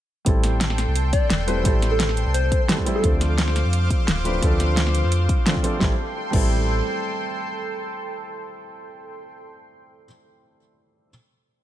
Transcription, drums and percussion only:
0.26 kick, closed hi-hat
0.43 snare, closed hi-hat
0.61 snare, closed hi-hat
0.70 snare
0.78 snare, closed hi-hat
0.96 closed hi-hat
1.13 kick, closed hi-hat
1.30 snare, closed hi-hat
1.48 closed hi-hat
1.65 kick, closed hi-hat
1.82 snare, closed hi-hat
2.00 snare, closed hi-hat
2.09 snare
2.17 closed hi-hat
2.34 closed hi-hat
2.52 kick, closed hi-hat
2.69 snare, closed hi-hat
2.78 kick
2.87 closed hi-hat
3.04 kick, closed hi-hat
3.21 snare, closed hi-hat
3.38 snare, closed hi-hat
3.48 snare
3.56 snare, closed hi-hat
3.73 closed hi-hat
3.90 kick, closed hi-hat
4.08 snare, closed hi-hat
4.25 closed hi-hat
4.42 kick, closed hi-hat
4.60 snare, closed hi-hat
4.77 snare, closed hi-hat
4.87 snare
4.95 closed hi-hat
5.12 closed hi-hat
5.29 kick, closed hi-hat
5.46 snare, closed hi-hat
5.56 kick
5.64 closed hi-hat
5.81 kick, snare
6.33 kick, crash

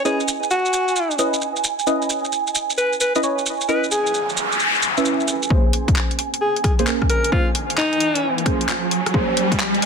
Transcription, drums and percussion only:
0.05 shaker
0.20 shaker
0.28 shaker
0.43 shaker
0.51 shaker
0.66 shaker
0.73 shaker
0.88 shaker
0.96 shaker
1.11 shaker
1.19 shaker
1.34 shaker
1.41 shaker
1.56 shaker
1.64 shaker
1.79 shaker
1.87 shaker
2.02 shaker
2.10 shaker
2.25 shaker
2.32 shaker
2.47 shaker
2.55 shaker
2.70 shaker
2.78 shaker
2.93 shaker
3.01 shaker
3.15 shaker
3.23 shaker
3.38 shaker
3.46 shaker
3.61 shaker
3.69 shaker
3.84 shaker
3.92 shaker
4.07 shaker
4.14 shaker
4.29 shaker
4.37 shaker
4.52 shaker
4.60 shaker
4.75 shaker
4.82 shaker
4.97 shaker
5.05 shaker
5.20 shaker
5.28 shaker
5.43 shaker
5.50 kick
5.73 open hi-hat
5.88 kick, closed hi-hat
5.96 clap
6.11 closed hi-hat
6.19 open hi-hat
6.34 closed hi-hat
6.56 closed hi-hat
6.64 kick, cross-stick, open hi-hat
6.79 closed hi-hat
6.87 clap
7.02 kick, cross-stick
7.10 open hi-hat
7.24 closed hi-hat
7.32 kick
7.55 open hi-hat
7.70 closed hi-hat
7.78 clap
7.93 closed hi-hat
8.00 open hi-hat
8.15 closed hi-hat
8.38 closed hi-hat
8.46 kick, cross-stick, open hi-hat
8.61 closed hi-hat
8.69 clap
8.91 open hi-hat
9.06 cross-stick, closed hi-hat
9.14 kick
9.37 open hi-hat
9.52 kick, closed hi-hat
9.60 clap
9.75 closed hi-hat
9.82 open hi-hat

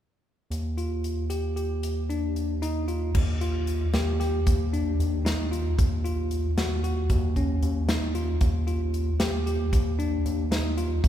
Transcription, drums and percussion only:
0.52 closed hi-hat
0.78 closed hi-hat
1.04 closed hi-hat
1.30 closed hi-hat
1.57 closed hi-hat
1.83 closed hi-hat
2.10 closed hi-hat
2.36 closed hi-hat
2.63 closed hi-hat
2.88 closed hi-hat
3.15 kick, crash
3.41 closed hi-hat
3.67 closed hi-hat
3.94 snare, closed hi-hat
4.21 snare, closed hi-hat
4.47 kick, closed hi-hat
4.74 closed hi-hat
5.00 closed hi-hat
5.26 snare, closed hi-hat
5.53 closed hi-hat
5.79 kick, closed hi-hat
6.05 closed hi-hat
6.31 closed hi-hat
6.58 snare, closed hi-hat
6.84 closed hi-hat
7.10 kick, closed hi-hat
7.36 kick, closed hi-hat
7.63 closed hi-hat
7.89 snare, closed hi-hat
8.15 closed hi-hat
8.41 kick, closed hi-hat
8.68 closed hi-hat
8.94 closed hi-hat
9.20 snare, closed hi-hat
9.47 closed hi-hat
9.73 kick, closed hi-hat
10.00 closed hi-hat
10.26 closed hi-hat
10.52 snare, closed hi-hat
10.78 closed hi-hat
11.04 kick, closed hi-hat

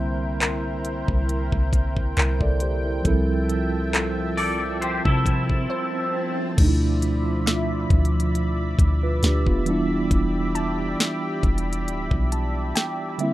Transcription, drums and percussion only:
0.42 clap, closed hi-hat
0.85 closed hi-hat
1.08 kick
1.29 closed hi-hat
1.52 kick
1.73 kick, closed hi-hat
1.97 kick
2.17 clap, closed hi-hat
2.41 kick
2.60 closed hi-hat
3.05 kick, closed hi-hat
3.49 closed hi-hat
3.94 clap, closed hi-hat
4.38 open hi-hat
4.82 closed hi-hat
5.05 kick
5.26 kick, closed hi-hat
5.50 kick
6.58 kick, closed hi-hat, crash
7.02 closed hi-hat
7.47 snare
7.90 kick, closed hi-hat
8.05 closed hi-hat
8.20 closed hi-hat
8.35 closed hi-hat
8.79 kick, closed hi-hat
9.23 snare, closed hi-hat
9.47 kick
9.66 closed hi-hat
10.11 kick, closed hi-hat
10.55 closed hi-hat
11.00 snare
11.43 kick, closed hi-hat
11.58 closed hi-hat
11.73 closed hi-hat
11.88 closed hi-hat
12.11 kick
12.32 closed hi-hat
12.76 snare, closed hi-hat
13.19 closed hi-hat

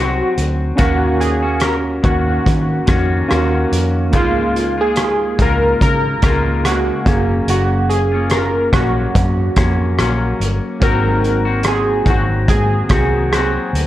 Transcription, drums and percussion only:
0.38 closed hi-hat
0.78 kick, closed hi-hat
1.21 closed hi-hat
1.60 cross-stick, closed hi-hat
2.04 kick, closed hi-hat
2.46 kick, closed hi-hat
2.87 kick, cross-stick, closed hi-hat
3.31 cross-stick, closed hi-hat
3.73 closed hi-hat
4.13 kick, closed hi-hat
4.56 closed hi-hat
4.96 cross-stick, closed hi-hat
5.39 kick, closed hi-hat
5.81 kick, closed hi-hat
6.22 kick, cross-stick, closed hi-hat
6.65 cross-stick, closed hi-hat
7.06 kick, closed hi-hat
7.48 closed hi-hat
7.90 closed hi-hat
8.30 cross-stick, closed hi-hat
8.73 kick, cross-stick, closed hi-hat
9.15 kick, closed hi-hat
9.56 kick, cross-stick, closed hi-hat
9.99 cross-stick, closed hi-hat
10.41 closed hi-hat
10.82 kick, closed hi-hat
11.24 closed hi-hat
11.63 cross-stick, closed hi-hat
12.06 kick, closed hi-hat
12.48 kick, closed hi-hat
12.89 kick, cross-stick, closed hi-hat
13.33 cross-stick, closed hi-hat
13.75 closed hi-hat

